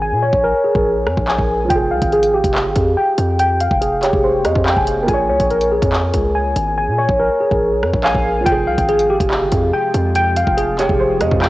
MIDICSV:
0, 0, Header, 1, 6, 480
1, 0, Start_track
1, 0, Key_signature, -4, "minor"
1, 0, Tempo, 422535
1, 14, Time_signature, 4, 2, 24, 8
1, 13054, End_track
2, 0, Start_track
2, 0, Title_t, "Tine electric piano"
2, 0, Program_c, 0, 4
2, 0, Note_on_c, 0, 68, 79
2, 20, Note_on_c, 0, 80, 98
2, 255, Note_off_c, 0, 68, 0
2, 255, Note_on_c, 0, 73, 88
2, 496, Note_on_c, 0, 70, 99
2, 730, Note_on_c, 0, 68, 73
2, 1448, Note_off_c, 0, 80, 0
2, 1462, Note_on_c, 0, 80, 95
2, 1694, Note_off_c, 0, 73, 0
2, 1929, Note_on_c, 0, 79, 103
2, 1932, Note_off_c, 0, 68, 0
2, 1935, Note_off_c, 0, 70, 0
2, 1938, Note_off_c, 0, 80, 0
2, 2171, Note_on_c, 0, 77, 85
2, 2417, Note_on_c, 0, 68, 93
2, 2658, Note_on_c, 0, 67, 89
2, 3363, Note_off_c, 0, 79, 0
2, 3377, Note_on_c, 0, 79, 91
2, 3612, Note_off_c, 0, 77, 0
2, 3843, Note_off_c, 0, 79, 0
2, 3855, Note_off_c, 0, 68, 0
2, 3857, Note_on_c, 0, 79, 112
2, 4096, Note_off_c, 0, 67, 0
2, 4097, Note_on_c, 0, 77, 85
2, 4332, Note_on_c, 0, 68, 92
2, 4582, Note_on_c, 0, 67, 79
2, 5279, Note_off_c, 0, 79, 0
2, 5292, Note_on_c, 0, 79, 101
2, 5535, Note_off_c, 0, 77, 0
2, 5773, Note_off_c, 0, 68, 0
2, 5773, Note_off_c, 0, 79, 0
2, 5775, Note_on_c, 0, 80, 99
2, 5778, Note_off_c, 0, 67, 0
2, 6014, Note_on_c, 0, 73, 87
2, 6256, Note_on_c, 0, 70, 92
2, 6496, Note_on_c, 0, 68, 80
2, 7201, Note_off_c, 0, 80, 0
2, 7214, Note_on_c, 0, 80, 91
2, 7454, Note_off_c, 0, 73, 0
2, 7686, Note_off_c, 0, 80, 0
2, 7694, Note_off_c, 0, 70, 0
2, 7700, Note_on_c, 0, 80, 95
2, 7935, Note_off_c, 0, 68, 0
2, 7935, Note_on_c, 0, 73, 89
2, 8176, Note_on_c, 0, 70, 94
2, 8410, Note_on_c, 0, 68, 72
2, 9128, Note_off_c, 0, 80, 0
2, 9142, Note_on_c, 0, 80, 95
2, 9374, Note_off_c, 0, 73, 0
2, 9608, Note_on_c, 0, 79, 105
2, 9612, Note_off_c, 0, 68, 0
2, 9615, Note_off_c, 0, 70, 0
2, 9618, Note_off_c, 0, 80, 0
2, 9851, Note_on_c, 0, 77, 83
2, 10096, Note_on_c, 0, 68, 95
2, 10337, Note_on_c, 0, 67, 85
2, 11042, Note_off_c, 0, 79, 0
2, 11056, Note_on_c, 0, 79, 91
2, 11292, Note_off_c, 0, 77, 0
2, 11523, Note_off_c, 0, 79, 0
2, 11534, Note_off_c, 0, 68, 0
2, 11536, Note_on_c, 0, 79, 115
2, 11775, Note_off_c, 0, 67, 0
2, 11776, Note_on_c, 0, 77, 89
2, 12011, Note_on_c, 0, 68, 94
2, 12261, Note_on_c, 0, 67, 81
2, 12959, Note_off_c, 0, 79, 0
2, 12972, Note_on_c, 0, 79, 97
2, 13054, Note_off_c, 0, 67, 0
2, 13054, Note_off_c, 0, 68, 0
2, 13054, Note_off_c, 0, 77, 0
2, 13054, Note_off_c, 0, 79, 0
2, 13054, End_track
3, 0, Start_track
3, 0, Title_t, "Grand piano"
3, 0, Program_c, 1, 0
3, 1871, Note_on_c, 1, 53, 69
3, 1912, Note_on_c, 1, 65, 77
3, 1994, Note_on_c, 1, 68, 93
3, 2138, Control_c, 1, 64, 127
3, 4575, Note_on_c, 1, 73, 73
3, 4798, Note_off_c, 1, 73, 0
3, 4813, Note_on_c, 1, 72, 80
3, 5037, Note_off_c, 1, 72, 0
3, 5059, Note_on_c, 1, 75, 71
3, 5280, Note_off_c, 1, 75, 0
3, 5291, Note_on_c, 1, 77, 69
3, 5404, Note_off_c, 1, 77, 0
3, 5416, Note_on_c, 1, 80, 71
3, 5697, Note_off_c, 1, 53, 0
3, 5711, Note_on_c, 1, 58, 81
3, 5717, Note_off_c, 1, 65, 0
3, 5750, Note_off_c, 1, 80, 0
3, 5751, Note_on_c, 1, 65, 74
3, 5758, Note_off_c, 1, 68, 0
3, 5790, Control_c, 1, 64, 0
3, 5792, Note_on_c, 1, 68, 74
3, 5834, Note_on_c, 1, 73, 86
3, 5980, Control_c, 1, 64, 127
3, 9132, Note_on_c, 1, 77, 78
3, 9537, Note_off_c, 1, 58, 0
3, 9551, Note_on_c, 1, 53, 69
3, 9557, Note_off_c, 1, 65, 0
3, 9577, Note_off_c, 1, 68, 0
3, 9579, Note_off_c, 1, 77, 0
3, 9592, Note_on_c, 1, 65, 76
3, 9598, Note_off_c, 1, 73, 0
3, 9631, Control_c, 1, 64, 0
3, 9674, Note_on_c, 1, 68, 93
3, 9825, Control_c, 1, 64, 127
3, 12254, Note_on_c, 1, 73, 75
3, 12477, Note_off_c, 1, 73, 0
3, 12493, Note_on_c, 1, 72, 79
3, 12717, Note_off_c, 1, 72, 0
3, 12738, Note_on_c, 1, 75, 72
3, 12959, Note_off_c, 1, 75, 0
3, 12970, Note_on_c, 1, 77, 68
3, 13054, Note_off_c, 1, 53, 0
3, 13054, Note_off_c, 1, 65, 0
3, 13054, Note_off_c, 1, 68, 0
3, 13054, Note_off_c, 1, 77, 0
3, 13054, End_track
4, 0, Start_track
4, 0, Title_t, "Ambient pad"
4, 0, Program_c, 2, 92
4, 9613, Note_on_c, 2, 48, 86
4, 9613, Note_on_c, 2, 53, 80
4, 9613, Note_on_c, 2, 56, 79
4, 9613, Note_on_c, 2, 65, 94
4, 13054, Note_off_c, 2, 48, 0
4, 13054, Note_off_c, 2, 53, 0
4, 13054, Note_off_c, 2, 56, 0
4, 13054, Note_off_c, 2, 65, 0
4, 13054, End_track
5, 0, Start_track
5, 0, Title_t, "808-style bass"
5, 0, Program_c, 3, 38
5, 0, Note_on_c, 3, 32, 108
5, 133, Note_on_c, 3, 46, 101
5, 150, Note_off_c, 3, 32, 0
5, 361, Note_off_c, 3, 46, 0
5, 373, Note_on_c, 3, 34, 99
5, 604, Note_off_c, 3, 34, 0
5, 854, Note_on_c, 3, 34, 98
5, 1214, Note_on_c, 3, 41, 94
5, 1231, Note_off_c, 3, 34, 0
5, 1328, Note_off_c, 3, 41, 0
5, 1334, Note_on_c, 3, 34, 105
5, 1564, Note_off_c, 3, 34, 0
5, 1573, Note_on_c, 3, 34, 98
5, 1919, Note_off_c, 3, 34, 0
5, 1934, Note_on_c, 3, 29, 109
5, 2174, Note_on_c, 3, 36, 98
5, 2191, Note_off_c, 3, 29, 0
5, 2288, Note_off_c, 3, 36, 0
5, 2293, Note_on_c, 3, 32, 100
5, 2754, Note_off_c, 3, 32, 0
5, 2774, Note_on_c, 3, 29, 103
5, 3013, Note_on_c, 3, 31, 100
5, 3031, Note_off_c, 3, 29, 0
5, 3127, Note_off_c, 3, 31, 0
5, 3134, Note_on_c, 3, 41, 105
5, 3364, Note_off_c, 3, 41, 0
5, 3614, Note_on_c, 3, 41, 99
5, 4189, Note_off_c, 3, 41, 0
5, 4214, Note_on_c, 3, 29, 103
5, 4674, Note_off_c, 3, 29, 0
5, 4694, Note_on_c, 3, 29, 103
5, 5053, Note_on_c, 3, 41, 98
5, 5071, Note_off_c, 3, 29, 0
5, 5167, Note_off_c, 3, 41, 0
5, 5174, Note_on_c, 3, 41, 103
5, 5404, Note_off_c, 3, 41, 0
5, 5414, Note_on_c, 3, 29, 98
5, 5759, Note_off_c, 3, 29, 0
5, 5774, Note_on_c, 3, 34, 108
5, 6014, Note_on_c, 3, 36, 99
5, 6031, Note_off_c, 3, 34, 0
5, 6127, Note_off_c, 3, 36, 0
5, 6133, Note_on_c, 3, 34, 98
5, 6594, Note_off_c, 3, 34, 0
5, 6613, Note_on_c, 3, 41, 99
5, 6959, Note_off_c, 3, 41, 0
5, 6974, Note_on_c, 3, 37, 102
5, 7434, Note_off_c, 3, 37, 0
5, 7453, Note_on_c, 3, 32, 107
5, 7814, Note_on_c, 3, 46, 97
5, 7831, Note_off_c, 3, 32, 0
5, 8042, Note_off_c, 3, 46, 0
5, 8053, Note_on_c, 3, 34, 100
5, 8284, Note_off_c, 3, 34, 0
5, 8533, Note_on_c, 3, 34, 100
5, 8893, Note_on_c, 3, 41, 98
5, 8910, Note_off_c, 3, 34, 0
5, 9007, Note_off_c, 3, 41, 0
5, 9013, Note_on_c, 3, 34, 102
5, 9244, Note_off_c, 3, 34, 0
5, 9254, Note_on_c, 3, 34, 104
5, 9599, Note_off_c, 3, 34, 0
5, 9614, Note_on_c, 3, 29, 113
5, 9854, Note_on_c, 3, 36, 98
5, 9871, Note_off_c, 3, 29, 0
5, 9968, Note_off_c, 3, 36, 0
5, 9973, Note_on_c, 3, 32, 100
5, 10434, Note_off_c, 3, 32, 0
5, 10453, Note_on_c, 3, 29, 104
5, 10694, Note_on_c, 3, 31, 104
5, 10711, Note_off_c, 3, 29, 0
5, 10808, Note_off_c, 3, 31, 0
5, 10813, Note_on_c, 3, 41, 99
5, 11044, Note_off_c, 3, 41, 0
5, 11293, Note_on_c, 3, 41, 106
5, 11869, Note_off_c, 3, 41, 0
5, 11893, Note_on_c, 3, 29, 102
5, 12354, Note_off_c, 3, 29, 0
5, 12373, Note_on_c, 3, 29, 105
5, 12733, Note_on_c, 3, 41, 98
5, 12750, Note_off_c, 3, 29, 0
5, 12847, Note_off_c, 3, 41, 0
5, 12853, Note_on_c, 3, 41, 109
5, 13054, Note_off_c, 3, 41, 0
5, 13054, End_track
6, 0, Start_track
6, 0, Title_t, "Drums"
6, 373, Note_on_c, 9, 36, 95
6, 487, Note_off_c, 9, 36, 0
6, 853, Note_on_c, 9, 36, 107
6, 967, Note_off_c, 9, 36, 0
6, 1213, Note_on_c, 9, 37, 103
6, 1326, Note_off_c, 9, 37, 0
6, 1334, Note_on_c, 9, 36, 88
6, 1447, Note_off_c, 9, 36, 0
6, 1453, Note_on_c, 9, 39, 123
6, 1567, Note_off_c, 9, 39, 0
6, 1574, Note_on_c, 9, 36, 101
6, 1687, Note_off_c, 9, 36, 0
6, 1933, Note_on_c, 9, 42, 80
6, 1934, Note_on_c, 9, 36, 110
6, 2047, Note_off_c, 9, 36, 0
6, 2047, Note_off_c, 9, 42, 0
6, 2293, Note_on_c, 9, 42, 75
6, 2294, Note_on_c, 9, 36, 97
6, 2406, Note_off_c, 9, 42, 0
6, 2407, Note_off_c, 9, 36, 0
6, 2413, Note_on_c, 9, 42, 45
6, 2527, Note_off_c, 9, 42, 0
6, 2533, Note_on_c, 9, 42, 73
6, 2647, Note_off_c, 9, 42, 0
6, 2773, Note_on_c, 9, 36, 101
6, 2778, Note_on_c, 9, 42, 75
6, 2887, Note_off_c, 9, 36, 0
6, 2891, Note_off_c, 9, 42, 0
6, 2894, Note_on_c, 9, 39, 119
6, 3007, Note_off_c, 9, 39, 0
6, 3131, Note_on_c, 9, 42, 79
6, 3134, Note_on_c, 9, 36, 94
6, 3245, Note_off_c, 9, 42, 0
6, 3248, Note_off_c, 9, 36, 0
6, 3612, Note_on_c, 9, 42, 82
6, 3726, Note_off_c, 9, 42, 0
6, 3854, Note_on_c, 9, 42, 82
6, 3967, Note_off_c, 9, 42, 0
6, 4094, Note_on_c, 9, 42, 86
6, 4207, Note_off_c, 9, 42, 0
6, 4214, Note_on_c, 9, 36, 97
6, 4327, Note_off_c, 9, 36, 0
6, 4336, Note_on_c, 9, 42, 76
6, 4450, Note_off_c, 9, 42, 0
6, 4574, Note_on_c, 9, 39, 71
6, 4574, Note_on_c, 9, 42, 80
6, 4688, Note_off_c, 9, 39, 0
6, 4688, Note_off_c, 9, 42, 0
6, 4694, Note_on_c, 9, 36, 99
6, 4807, Note_off_c, 9, 36, 0
6, 5051, Note_on_c, 9, 42, 76
6, 5053, Note_on_c, 9, 37, 99
6, 5165, Note_off_c, 9, 42, 0
6, 5167, Note_off_c, 9, 37, 0
6, 5174, Note_on_c, 9, 36, 90
6, 5287, Note_off_c, 9, 36, 0
6, 5294, Note_on_c, 9, 39, 123
6, 5407, Note_off_c, 9, 39, 0
6, 5414, Note_on_c, 9, 36, 98
6, 5527, Note_off_c, 9, 36, 0
6, 5533, Note_on_c, 9, 42, 84
6, 5646, Note_off_c, 9, 42, 0
6, 5773, Note_on_c, 9, 42, 81
6, 5774, Note_on_c, 9, 36, 114
6, 5887, Note_off_c, 9, 36, 0
6, 5887, Note_off_c, 9, 42, 0
6, 6133, Note_on_c, 9, 36, 93
6, 6133, Note_on_c, 9, 42, 73
6, 6246, Note_off_c, 9, 42, 0
6, 6247, Note_off_c, 9, 36, 0
6, 6254, Note_on_c, 9, 42, 47
6, 6367, Note_off_c, 9, 42, 0
6, 6373, Note_on_c, 9, 42, 76
6, 6487, Note_off_c, 9, 42, 0
6, 6613, Note_on_c, 9, 36, 104
6, 6618, Note_on_c, 9, 42, 77
6, 6727, Note_off_c, 9, 36, 0
6, 6731, Note_off_c, 9, 42, 0
6, 6733, Note_on_c, 9, 39, 121
6, 6847, Note_off_c, 9, 39, 0
6, 6971, Note_on_c, 9, 42, 82
6, 6974, Note_on_c, 9, 36, 89
6, 7084, Note_off_c, 9, 42, 0
6, 7087, Note_off_c, 9, 36, 0
6, 7452, Note_on_c, 9, 42, 83
6, 7566, Note_off_c, 9, 42, 0
6, 8053, Note_on_c, 9, 36, 96
6, 8167, Note_off_c, 9, 36, 0
6, 8533, Note_on_c, 9, 36, 106
6, 8647, Note_off_c, 9, 36, 0
6, 8892, Note_on_c, 9, 37, 105
6, 9006, Note_off_c, 9, 37, 0
6, 9013, Note_on_c, 9, 36, 90
6, 9127, Note_off_c, 9, 36, 0
6, 9133, Note_on_c, 9, 39, 122
6, 9247, Note_off_c, 9, 39, 0
6, 9254, Note_on_c, 9, 36, 102
6, 9367, Note_off_c, 9, 36, 0
6, 9613, Note_on_c, 9, 42, 78
6, 9614, Note_on_c, 9, 36, 110
6, 9726, Note_off_c, 9, 42, 0
6, 9727, Note_off_c, 9, 36, 0
6, 9972, Note_on_c, 9, 42, 70
6, 9973, Note_on_c, 9, 36, 96
6, 10086, Note_off_c, 9, 42, 0
6, 10087, Note_off_c, 9, 36, 0
6, 10094, Note_on_c, 9, 42, 46
6, 10207, Note_off_c, 9, 42, 0
6, 10213, Note_on_c, 9, 42, 76
6, 10327, Note_off_c, 9, 42, 0
6, 10453, Note_on_c, 9, 36, 107
6, 10458, Note_on_c, 9, 42, 75
6, 10567, Note_off_c, 9, 36, 0
6, 10571, Note_off_c, 9, 42, 0
6, 10573, Note_on_c, 9, 39, 114
6, 10686, Note_off_c, 9, 39, 0
6, 10810, Note_on_c, 9, 42, 81
6, 10814, Note_on_c, 9, 36, 90
6, 10924, Note_off_c, 9, 42, 0
6, 10927, Note_off_c, 9, 36, 0
6, 11292, Note_on_c, 9, 42, 82
6, 11405, Note_off_c, 9, 42, 0
6, 11532, Note_on_c, 9, 42, 80
6, 11646, Note_off_c, 9, 42, 0
6, 11772, Note_on_c, 9, 42, 84
6, 11886, Note_off_c, 9, 42, 0
6, 11893, Note_on_c, 9, 36, 93
6, 12007, Note_off_c, 9, 36, 0
6, 12015, Note_on_c, 9, 42, 79
6, 12128, Note_off_c, 9, 42, 0
6, 12253, Note_on_c, 9, 39, 67
6, 12253, Note_on_c, 9, 42, 80
6, 12367, Note_off_c, 9, 39, 0
6, 12367, Note_off_c, 9, 42, 0
6, 12373, Note_on_c, 9, 36, 104
6, 12487, Note_off_c, 9, 36, 0
6, 12730, Note_on_c, 9, 42, 79
6, 12732, Note_on_c, 9, 37, 101
6, 12844, Note_off_c, 9, 42, 0
6, 12846, Note_off_c, 9, 37, 0
6, 12853, Note_on_c, 9, 36, 89
6, 12967, Note_off_c, 9, 36, 0
6, 12973, Note_on_c, 9, 39, 125
6, 13054, Note_off_c, 9, 39, 0
6, 13054, End_track
0, 0, End_of_file